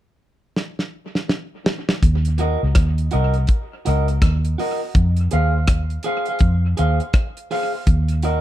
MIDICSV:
0, 0, Header, 1, 5, 480
1, 0, Start_track
1, 0, Tempo, 730816
1, 1329, Time_signature, 4, 2, 24, 8
1, 5523, End_track
2, 0, Start_track
2, 0, Title_t, "Clean electric guitar"
2, 0, Program_c, 0, 27
2, 1569, Note_on_c, 0, 66, 78
2, 1575, Note_on_c, 0, 70, 84
2, 1581, Note_on_c, 0, 75, 95
2, 1708, Note_off_c, 0, 66, 0
2, 1711, Note_off_c, 0, 70, 0
2, 1714, Note_off_c, 0, 75, 0
2, 2046, Note_on_c, 0, 66, 82
2, 2053, Note_on_c, 0, 70, 92
2, 2056, Note_on_c, 0, 75, 95
2, 2186, Note_off_c, 0, 66, 0
2, 2190, Note_off_c, 0, 70, 0
2, 2192, Note_off_c, 0, 75, 0
2, 2531, Note_on_c, 0, 66, 68
2, 2537, Note_on_c, 0, 70, 79
2, 2542, Note_on_c, 0, 75, 84
2, 2669, Note_off_c, 0, 66, 0
2, 2672, Note_off_c, 0, 70, 0
2, 2672, Note_off_c, 0, 75, 0
2, 3011, Note_on_c, 0, 66, 78
2, 3018, Note_on_c, 0, 70, 85
2, 3022, Note_on_c, 0, 75, 88
2, 3149, Note_off_c, 0, 66, 0
2, 3153, Note_off_c, 0, 70, 0
2, 3154, Note_off_c, 0, 75, 0
2, 3490, Note_on_c, 0, 68, 80
2, 3497, Note_on_c, 0, 72, 85
2, 3502, Note_on_c, 0, 77, 93
2, 3629, Note_off_c, 0, 68, 0
2, 3632, Note_off_c, 0, 72, 0
2, 3634, Note_off_c, 0, 77, 0
2, 3969, Note_on_c, 0, 68, 86
2, 3977, Note_on_c, 0, 72, 94
2, 3981, Note_on_c, 0, 77, 91
2, 4108, Note_off_c, 0, 68, 0
2, 4112, Note_off_c, 0, 72, 0
2, 4114, Note_off_c, 0, 77, 0
2, 4121, Note_on_c, 0, 77, 64
2, 4128, Note_on_c, 0, 72, 54
2, 4132, Note_on_c, 0, 68, 56
2, 4186, Note_off_c, 0, 77, 0
2, 4189, Note_off_c, 0, 72, 0
2, 4191, Note_off_c, 0, 68, 0
2, 4447, Note_on_c, 0, 68, 81
2, 4456, Note_on_c, 0, 72, 83
2, 4461, Note_on_c, 0, 77, 74
2, 4587, Note_off_c, 0, 68, 0
2, 4591, Note_off_c, 0, 72, 0
2, 4594, Note_off_c, 0, 77, 0
2, 4931, Note_on_c, 0, 68, 82
2, 4935, Note_on_c, 0, 72, 85
2, 4940, Note_on_c, 0, 77, 91
2, 5069, Note_off_c, 0, 68, 0
2, 5071, Note_off_c, 0, 72, 0
2, 5073, Note_off_c, 0, 77, 0
2, 5408, Note_on_c, 0, 66, 82
2, 5414, Note_on_c, 0, 70, 93
2, 5418, Note_on_c, 0, 75, 95
2, 5523, Note_off_c, 0, 66, 0
2, 5523, Note_off_c, 0, 70, 0
2, 5523, Note_off_c, 0, 75, 0
2, 5523, End_track
3, 0, Start_track
3, 0, Title_t, "Fingered electric bass"
3, 0, Program_c, 1, 33
3, 1334, Note_on_c, 1, 39, 93
3, 1676, Note_off_c, 1, 39, 0
3, 1727, Note_on_c, 1, 37, 81
3, 1804, Note_off_c, 1, 37, 0
3, 1815, Note_on_c, 1, 39, 90
3, 2024, Note_off_c, 1, 39, 0
3, 2061, Note_on_c, 1, 36, 99
3, 2268, Note_off_c, 1, 36, 0
3, 2543, Note_on_c, 1, 37, 92
3, 2749, Note_off_c, 1, 37, 0
3, 2773, Note_on_c, 1, 39, 85
3, 2984, Note_off_c, 1, 39, 0
3, 3255, Note_on_c, 1, 41, 99
3, 3465, Note_off_c, 1, 41, 0
3, 3500, Note_on_c, 1, 39, 89
3, 3919, Note_off_c, 1, 39, 0
3, 4211, Note_on_c, 1, 41, 89
3, 4422, Note_off_c, 1, 41, 0
3, 4461, Note_on_c, 1, 39, 84
3, 4588, Note_off_c, 1, 39, 0
3, 5172, Note_on_c, 1, 39, 104
3, 5514, Note_off_c, 1, 39, 0
3, 5523, End_track
4, 0, Start_track
4, 0, Title_t, "Muted clean electric guitar strokes"
4, 2680, Note_on_c, 9, 29, 39
4, 2745, Note_off_c, 9, 29, 0
4, 4601, Note_on_c, 9, 29, 48
4, 4667, Note_off_c, 9, 29, 0
4, 5081, Note_on_c, 9, 29, 45
4, 5146, Note_off_c, 9, 29, 0
4, 5523, End_track
5, 0, Start_track
5, 0, Title_t, "Drums"
5, 371, Note_on_c, 9, 38, 52
5, 436, Note_off_c, 9, 38, 0
5, 519, Note_on_c, 9, 38, 53
5, 585, Note_off_c, 9, 38, 0
5, 757, Note_on_c, 9, 38, 64
5, 823, Note_off_c, 9, 38, 0
5, 850, Note_on_c, 9, 38, 74
5, 916, Note_off_c, 9, 38, 0
5, 1091, Note_on_c, 9, 38, 109
5, 1157, Note_off_c, 9, 38, 0
5, 1239, Note_on_c, 9, 38, 93
5, 1305, Note_off_c, 9, 38, 0
5, 1330, Note_on_c, 9, 36, 98
5, 1331, Note_on_c, 9, 42, 89
5, 1396, Note_off_c, 9, 36, 0
5, 1397, Note_off_c, 9, 42, 0
5, 1477, Note_on_c, 9, 42, 58
5, 1542, Note_off_c, 9, 42, 0
5, 1564, Note_on_c, 9, 42, 73
5, 1629, Note_off_c, 9, 42, 0
5, 1806, Note_on_c, 9, 42, 119
5, 1807, Note_on_c, 9, 37, 109
5, 1811, Note_on_c, 9, 36, 116
5, 1872, Note_off_c, 9, 37, 0
5, 1872, Note_off_c, 9, 42, 0
5, 1877, Note_off_c, 9, 36, 0
5, 1958, Note_on_c, 9, 42, 49
5, 2023, Note_off_c, 9, 42, 0
5, 2042, Note_on_c, 9, 42, 72
5, 2107, Note_off_c, 9, 42, 0
5, 2191, Note_on_c, 9, 42, 43
5, 2257, Note_off_c, 9, 42, 0
5, 2281, Note_on_c, 9, 42, 67
5, 2290, Note_on_c, 9, 36, 95
5, 2347, Note_off_c, 9, 42, 0
5, 2356, Note_off_c, 9, 36, 0
5, 2534, Note_on_c, 9, 42, 81
5, 2599, Note_off_c, 9, 42, 0
5, 2681, Note_on_c, 9, 42, 47
5, 2746, Note_off_c, 9, 42, 0
5, 2770, Note_on_c, 9, 36, 108
5, 2770, Note_on_c, 9, 42, 77
5, 2773, Note_on_c, 9, 37, 101
5, 2836, Note_off_c, 9, 36, 0
5, 2836, Note_off_c, 9, 42, 0
5, 2838, Note_off_c, 9, 37, 0
5, 2920, Note_on_c, 9, 42, 50
5, 2986, Note_off_c, 9, 42, 0
5, 3017, Note_on_c, 9, 46, 83
5, 3083, Note_off_c, 9, 46, 0
5, 3251, Note_on_c, 9, 36, 108
5, 3252, Note_on_c, 9, 42, 85
5, 3316, Note_off_c, 9, 36, 0
5, 3317, Note_off_c, 9, 42, 0
5, 3393, Note_on_c, 9, 42, 57
5, 3458, Note_off_c, 9, 42, 0
5, 3486, Note_on_c, 9, 42, 68
5, 3552, Note_off_c, 9, 42, 0
5, 3727, Note_on_c, 9, 42, 108
5, 3728, Note_on_c, 9, 37, 111
5, 3731, Note_on_c, 9, 36, 113
5, 3793, Note_off_c, 9, 37, 0
5, 3793, Note_off_c, 9, 42, 0
5, 3796, Note_off_c, 9, 36, 0
5, 3875, Note_on_c, 9, 42, 42
5, 3941, Note_off_c, 9, 42, 0
5, 3959, Note_on_c, 9, 42, 75
5, 4025, Note_off_c, 9, 42, 0
5, 4108, Note_on_c, 9, 42, 46
5, 4174, Note_off_c, 9, 42, 0
5, 4196, Note_on_c, 9, 42, 67
5, 4207, Note_on_c, 9, 36, 104
5, 4262, Note_off_c, 9, 42, 0
5, 4273, Note_off_c, 9, 36, 0
5, 4449, Note_on_c, 9, 42, 81
5, 4515, Note_off_c, 9, 42, 0
5, 4598, Note_on_c, 9, 42, 47
5, 4663, Note_off_c, 9, 42, 0
5, 4685, Note_on_c, 9, 42, 76
5, 4688, Note_on_c, 9, 36, 111
5, 4688, Note_on_c, 9, 37, 114
5, 4751, Note_off_c, 9, 42, 0
5, 4754, Note_off_c, 9, 36, 0
5, 4754, Note_off_c, 9, 37, 0
5, 4840, Note_on_c, 9, 42, 46
5, 4905, Note_off_c, 9, 42, 0
5, 4933, Note_on_c, 9, 46, 86
5, 4998, Note_off_c, 9, 46, 0
5, 5168, Note_on_c, 9, 36, 105
5, 5168, Note_on_c, 9, 42, 97
5, 5233, Note_off_c, 9, 42, 0
5, 5234, Note_off_c, 9, 36, 0
5, 5310, Note_on_c, 9, 42, 60
5, 5376, Note_off_c, 9, 42, 0
5, 5402, Note_on_c, 9, 42, 76
5, 5468, Note_off_c, 9, 42, 0
5, 5523, End_track
0, 0, End_of_file